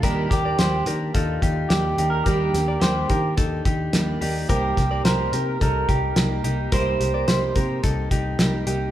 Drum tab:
HH |xxxxxxxx|xxxxxxxo|xxxxxxxx|xxxxxxxx|
SD |-oo---o-|-oo---o-|-oo---o-|--o---o-|
BD |oo--oo--|o--ooo--|oo--oo--|o--ooo--|